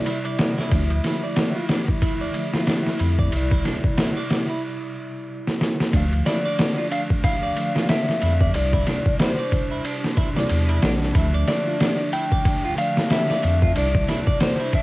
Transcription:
0.00 0.73 C3 medium
0.00 0.73 G3 medium
0.00 0.73 E4 medium
0.00 5.94 E4 medium
0.00 0.73 D5 medium
0.00 5.95 E5 medium
0.06 0.17 E4 medium
0.06 ride medium
0.25 0.56 D5 medium
0.25 ride soft
0.39 snare loud
0.39 ride medium
0.58 0.70 E4 medium
0.58 snare soft
0.69 1.01 D2 medium
0.69 2.30 D3 medium
0.69 2.32 F3 medium
0.69 2.31 A3 medium
0.69 0.82 D4 medium
0.69 kick loud
0.69 ride medium
0.75 2.33 E5 loud
0.90 ride soft
1.04 1.15 E4 medium
1.04 snare medium
1.04 ride medium
1.24 1.54 D5 medium
1.36 snare loud
1.36 ride medium
1.56 1.68 F4 medium
1.69 1.80 D4 medium
1.69 snare loud
1.69 ride medium
1.88 kick medium
2.02 2.13 E4 medium
2.02 kick loud
2.02 ride medium
2.21 2.52 D5 medium
2.33 3.28 D3 medium
2.33 3.30 F3 medium
2.33 3.29 A3 medium
2.33 ride medium
2.38 3.31 E5 medium
2.53 2.66 F4 medium
2.53 snare medium
2.67 2.78 D4 medium
2.67 snare loud
2.67 ride medium
2.86 snare soft
2.99 3.30 F2 loud
2.99 3.11 E4 medium
2.99 ride medium
3.19 3.32 D5 medium
3.19 kick medium
3.31 3.62 C2 medium
3.31 4.62 C3 medium
3.31 4.63 G3 medium
3.31 4.64 E4 medium
3.31 ride medium
3.37 4.65 D5 medium
3.51 3.64 E4 medium
3.51 kick medium
3.65 3.76 D4 medium
3.65 snare soft
3.65 ride medium
3.84 kick medium
3.97 4.08 E4 medium
3.97 snare loud
3.97 ride medium
4.17 4.48 D5 medium
4.30 snare loud
4.30 ride medium
4.50 4.62 E4 medium
5.47 snare medium
5.61 snare medium
5.80 snare medium
5.91 6.23 D2 medium
5.91 7.52 D3 medium
5.91 7.53 A3 medium
5.91 14.82 D4 medium
5.91 6.04 D4 medium
5.91 kick loud
5.91 ride medium
5.95 7.54 F3 medium
5.95 7.55 F5 loud
6.13 ride soft
6.26 6.37 E4 medium
6.26 6.87 D5 loud
6.26 snare medium
6.26 ride medium
6.45 6.76 D5 medium
6.59 snare loud
6.59 ride medium
6.78 6.90 F4 medium
6.91 7.02 D4 medium
6.91 7.01 F5 medium
6.91 ride medium
7.10 kick medium
7.24 7.35 E4 medium
7.24 7.89 F5 loud
7.24 kick loud
7.24 ride medium
7.43 7.73 D5 medium
7.54 8.50 D3 medium
7.54 8.51 A3 medium
7.54 ride medium
7.58 8.52 F3 medium
7.58 8.53 D5 medium
7.75 7.87 F4 medium
7.75 snare medium
7.89 8.00 D4 medium
7.89 8.55 E5 loud
7.89 snare loud
7.89 ride medium
8.09 snare soft
8.21 8.52 F2 loud
8.21 8.32 E4 medium
8.21 ride medium
8.41 8.54 D5 medium
8.41 kick loud
8.52 8.84 C2 medium
8.52 10.31 C3 medium
8.52 10.32 G3 medium
8.52 10.33 E4 medium
8.52 9.16 D5 loud
8.52 ride medium
8.58 10.34 D5 medium
8.73 8.86 E4 medium
8.73 kick medium
8.87 8.98 D4 medium
8.87 snare soft
8.87 ride medium
9.06 kick loud
9.19 9.30 E4 medium
9.19 10.79 C5 medium
9.19 snare loud
9.19 ride medium
9.39 9.69 D5 medium
9.52 kick medium
9.52 ride medium
9.71 9.83 E4 medium
9.85 9.96 D4 medium
9.85 ride medium
10.04 snare soft
10.17 10.28 E4 medium
10.17 kick loud
10.17 ride medium
10.34 11.11 C3 medium
10.34 11.12 G3 medium
10.34 11.13 E4 medium
10.34 10.67 D5 medium
10.34 snare medium
10.40 11.14 D5 medium
10.49 10.80 E2 loud
10.49 ride medium
10.69 10.81 E4 medium
10.69 ride soft
10.82 11.12 A#1 medium
10.82 10.93 D4 medium
10.82 snare loud
10.82 ride medium
11.02 snare soft
11.12 11.45 D2 medium
11.12 12.73 D3 loud
11.12 12.75 F3 medium
11.12 12.74 A3 medium
11.12 11.26 E4 medium
11.12 kick loud
11.12 ride medium
11.18 12.76 E5 loud
11.34 11.65 D5 medium
11.34 ride soft
11.47 12.09 D5 loud
11.47 snare medium
11.47 ride medium
11.67 11.79 F4 medium
11.80 11.91 D4 medium
11.80 snare loud
11.80 ride medium
12.13 12.24 E4 medium
12.13 12.78 G5 loud
12.13 ride medium
12.32 12.63 D5 medium
12.32 kick loud
12.45 kick loud
12.45 ride medium
12.65 12.77 F4 medium
12.75 13.71 D3 medium
12.75 13.72 A3 medium
12.75 12.89 D4 medium
12.75 13.11 F5 loud
12.75 ride medium
12.80 13.73 F3 medium
12.80 13.74 D5 medium
12.97 snare medium
13.10 13.21 E4 medium
13.10 13.72 E5 loud
13.10 snare loud
13.10 ride medium
13.30 13.61 D5 medium
13.30 snare soft
13.43 13.73 F2 loud
13.43 ride medium
13.62 13.75 F4 medium
13.62 kick medium
13.73 14.82 C3 medium
13.73 14.82 G3 medium
13.73 13.87 D4 medium
13.73 ride medium
13.77 14.06 C2 medium
13.77 14.82 E4 medium
13.77 14.38 D5 loud
13.77 14.82 D5 medium
13.95 kick medium
14.08 14.19 E4 medium
14.08 snare soft
14.08 ride medium
14.27 14.58 D5 medium
14.27 kick loud
14.41 14.75 C5 medium
14.41 snare loud
14.41 ride loud
14.60 14.72 E4 medium
14.73 14.82 D4 medium
14.73 14.82 E5 medium
14.73 kick medium
14.73 ride medium

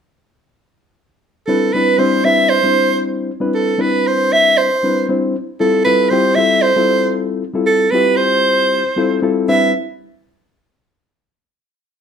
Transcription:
1.47 1.70 G3 medium
1.47 1.70 C4 medium
1.47 1.71 D4 medium
1.47 1.71 E4 medium
1.47 1.75 A4 medium
1.47 1.71 B4 medium
1.73 1.96 G3 medium
1.73 1.97 C4 medium
1.73 1.97 D4 medium
1.73 1.97 E4 medium
1.73 2.00 B4 medium
1.73 1.97 B4 medium
1.98 2.21 G3 medium
1.98 2.22 C4 medium
1.98 2.21 D4 medium
1.98 2.22 E4 medium
1.98 2.26 C5 medium
1.98 2.22 C5 medium
2.24 2.58 G3 medium
2.24 2.59 C4 medium
2.24 2.59 D4 medium
2.24 2.59 E4 medium
2.24 2.59 B4 medium
2.24 2.51 E5 loud
2.50 3.02 C5 medium
2.63 3.30 G3 medium
2.63 3.30 C4 medium
2.63 3.30 D4 medium
2.63 3.30 E4 medium
2.63 3.31 C5 medium
3.40 3.74 G3 medium
3.40 3.74 C4 medium
3.40 3.74 D4 medium
3.40 3.74 E4 medium
3.40 3.75 B4 medium
3.54 3.83 A4 medium
3.78 4.69 G3 medium
3.78 4.69 C4 medium
3.78 4.69 D4 medium
3.78 4.69 E4 medium
3.78 4.69 B4 medium
3.78 4.09 B4 medium
4.07 4.34 C5 medium
4.33 4.59 E5 loud
4.58 5.09 C5 medium
4.83 5.06 G3 medium
4.83 5.06 C4 medium
4.83 5.06 D4 medium
4.83 5.06 E4 medium
4.83 5.06 B4 medium
5.08 5.35 G3 medium
5.08 5.35 C4 medium
5.08 5.35 D4 medium
5.08 5.35 E4 medium
5.08 5.36 C5 medium
5.60 5.83 G3 medium
5.60 5.83 C4 medium
5.60 5.83 E4 medium
5.60 5.83 F4 medium
5.60 5.84 A4 medium
5.60 5.83 A4 medium
5.85 6.09 G3 medium
5.85 6.08 C4 medium
5.85 6.09 E4 medium
5.85 6.09 F4 medium
5.85 6.09 A4 medium
5.85 6.11 B4 medium
6.10 6.34 G3 medium
6.10 6.35 C4 medium
6.10 6.35 E4 medium
6.10 6.35 F4 medium
6.10 6.35 G4 loud
6.10 6.37 C5 medium
6.35 6.71 G3 medium
6.35 6.71 C4 medium
6.35 6.72 E4 medium
6.35 6.72 F4 medium
6.35 6.72 A4 medium
6.35 6.64 E5 loud
6.62 7.15 C5 medium
6.76 7.43 G3 medium
6.76 7.43 C4 medium
6.76 7.43 E4 medium
6.76 7.43 F4 medium
6.76 7.43 A4 medium
7.54 7.87 G3 medium
7.54 7.87 C4 medium
7.54 7.88 E4 medium
7.54 7.88 F4 medium
7.54 7.88 A4 medium
7.66 7.92 A4 medium
7.91 8.82 G3 medium
7.91 8.82 C4 medium
7.91 8.83 E4 medium
7.91 8.83 F4 medium
7.91 8.83 G4 medium
7.91 8.18 B4 medium
8.16 9.21 C5 loud
8.96 9.19 G3 medium
8.96 9.19 C4 medium
8.96 9.19 E4 medium
8.96 9.19 F4 medium
8.96 9.19 A4 medium
9.22 9.47 G3 medium
9.22 9.47 C4 medium
9.22 9.47 E4 medium
9.22 9.48 F4 medium
9.22 9.48 A4 loud
9.48 9.72 G3 medium
9.48 9.72 C4 medium
9.48 9.72 D4 medium
9.48 9.72 E4 medium
9.48 9.72 B4 medium
9.48 9.72 E5 medium

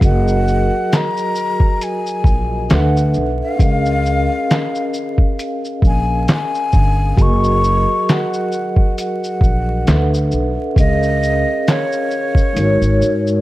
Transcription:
0.00 0.68 F#1 medium
0.00 2.64 F#3 medium
0.00 2.65 F#4 medium
0.00 2.66 G#4 medium
0.00 2.67 A#4 medium
0.00 kick medium
0.00 closed hi-hat medium
0.00 shaker medium
0.04 2.68 D#5 medium
0.04 0.96 F#5 medium
0.28 shaker soft
0.48 shaker soft
0.93 1.85 A#5 loud
0.93 snare loud
0.93 clap medium
0.93 closed hi-hat medium
0.93 shaker medium
1.17 shaker soft
1.35 shaker medium
1.60 kick medium
1.81 2.74 G#5 medium
1.81 closed hi-hat medium
1.81 shaker medium
2.07 shaker soft
2.24 2.67 A#1 medium
2.24 kick medium
2.24 shaker soft
2.69 3.13 D2 medium
2.69 3.59 D4 medium
2.69 3.59 A4 medium
2.69 3.60 B4 medium
2.69 3.60 E5 medium
2.69 3.61 F#5 medium
2.69 3.12 F#5 medium
2.69 snare loud
2.69 clap medium
2.69 closed hi-hat medium
2.69 shaker medium
2.97 shaker soft
3.14 3.39 B1 medium
3.14 shaker soft
3.43 5.16 F5 loud
3.56 4.26 C#2 medium
3.56 7.12 C#4 medium
3.56 7.13 G#4 medium
3.56 7.14 A#4 medium
3.56 kick loud
3.56 closed hi-hat medium
3.56 shaker medium
3.61 7.14 D#5 medium
3.61 7.15 F5 medium
3.86 shaker soft
4.06 shaker soft
4.51 snare loud
4.51 clap medium
4.51 closed hi-hat medium
4.51 shaker medium
4.75 shaker soft
4.94 shaker medium
5.18 kick medium
5.39 closed hi-hat medium
5.39 shaker medium
5.65 shaker soft
5.82 6.25 A#1 medium
5.82 kick medium
5.82 shaker soft
5.87 6.27 G#5 medium
6.28 snare loud
6.28 clap medium
6.28 closed hi-hat medium
6.28 shaker medium
6.33 7.23 G#5 medium
6.55 shaker soft
6.72 7.16 G1 medium
6.72 kick medium
6.72 shaker soft
7.15 7.84 F#1 medium
7.15 9.81 F#3 medium
7.15 9.82 F#4 medium
7.15 9.82 G#4 medium
7.15 kick loud
7.15 closed hi-hat medium
7.15 shaker medium
7.20 9.83 A#4 medium
7.20 9.84 D#5 medium
7.20 8.12 C#6 loud
7.44 shaker soft
7.64 shaker medium
8.09 8.98 F#5 medium
8.09 snare loud
8.09 clap medium
8.09 closed hi-hat medium
8.09 shaker medium
8.34 shaker soft
8.52 shaker soft
8.76 kick medium
8.98 10.29 F#5 medium
8.98 closed hi-hat medium
8.98 shaker medium
9.24 shaker soft
9.41 9.84 A#1 medium
9.41 kick medium
9.41 shaker soft
9.86 10.29 D2 medium
9.86 10.75 D4 medium
9.86 10.76 A4 medium
9.86 10.76 B4 medium
9.86 10.77 E5 medium
9.86 10.77 F#5 medium
9.86 snare loud
9.86 clap medium
9.86 closed hi-hat medium
9.86 shaker medium
10.14 shaker soft
10.31 10.56 B1 medium
10.31 shaker soft
10.74 11.43 C#2 medium
10.74 12.51 C#4 medium
10.74 12.51 G#4 medium
10.74 12.52 A#4 medium
10.74 kick loud
10.74 closed hi-hat medium
10.74 shaker medium
10.79 11.71 D#5 loud
10.79 12.53 D#5 medium
10.79 12.54 F5 medium
11.03 shaker soft
11.23 shaker medium
11.68 13.41 C#5 loud
11.68 snare loud
11.68 clap medium
11.68 closed hi-hat medium
11.68 shaker medium
11.92 shaker soft
12.11 shaker soft
12.35 kick medium
12.35 shaker soft
12.52 12.79 G#1 loud
12.52 13.41 G#3 medium
12.52 13.41 D#4 medium
12.52 13.41 F#4 medium
12.57 13.41 A#4 medium
12.57 13.41 C#5 medium
12.57 closed hi-hat medium
12.57 shaker medium
12.81 12.99 G#1 medium
12.81 shaker soft
13.01 13.41 G#2 medium
13.01 shaker soft
13.27 shaker soft

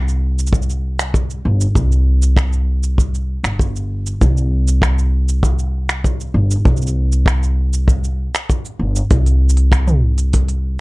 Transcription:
0.00 1.36 C2 medium
0.08 cabasa soft
0.39 cabasa medium
0.47 cabasa medium
0.53 kick medium
0.53 cabasa soft
0.62 cabasa soft
0.70 cabasa soft
0.99 finger snap medium
0.99 cabasa medium
1.14 kick medium
1.14 cabasa soft
1.31 cabasa soft
1.45 1.65 G1 medium
1.61 cabasa medium
1.75 3.36 C2 medium
1.75 kick medium
1.75 cabasa soft
1.92 cabasa soft
2.22 cabasa medium
2.37 finger snap medium
2.37 kick loud
2.37 cabasa soft
2.53 cabasa soft
2.83 cabasa medium
2.98 kick medium
2.98 cabasa medium
3.15 cabasa soft
3.44 4.12 G1 medium
3.44 finger snap medium
3.44 cabasa medium
3.59 kick medium
3.59 cabasa medium
3.76 cabasa soft
4.07 cabasa medium
4.21 6.27 C2 medium
4.21 kick loud
4.21 cabasa soft
4.37 cabasa soft
4.68 cabasa medium
4.82 finger snap medium
4.82 kick loud
4.82 cabasa soft
4.99 cabasa soft
5.29 cabasa medium
5.43 kick medium
5.43 cabasa soft
5.59 cabasa soft
5.89 finger snap medium
5.89 cabasa medium
6.04 kick medium
6.04 cabasa medium
6.20 cabasa soft
6.34 6.55 G1 medium
6.51 cabasa medium
6.65 8.25 C2 medium
6.65 kick loud
6.65 cabasa soft
6.77 cabasa soft
6.82 cabasa soft
6.87 cabasa soft
7.12 cabasa medium
7.26 finger snap medium
7.26 kick loud
7.26 cabasa medium
7.43 cabasa soft
7.74 cabasa medium
7.88 kick medium
7.88 cabasa soft
8.04 cabasa soft
8.35 finger snap medium
8.35 cabasa medium
8.50 kick medium
8.50 cabasa medium
8.65 cabasa soft
8.79 9.00 G1 medium
8.96 cabasa medium
9.11 10.80 C2 medium
9.11 kick loud
9.11 open hi-hat medium
9.11 cabasa soft
9.26 open hi-hat soft
9.26 cabasa soft
9.49 cabasa medium
9.57 open hi-hat soft
9.72 finger snap medium
9.72 kick loud
9.72 open hi-hat medium
9.72 cabasa medium
9.87 mid tom medium
9.87 cabasa soft
10.18 open hi-hat soft
10.18 cabasa medium
10.33 kick medium
10.33 open hi-hat medium
10.33 cabasa soft
10.49 open hi-hat soft
10.49 cabasa soft

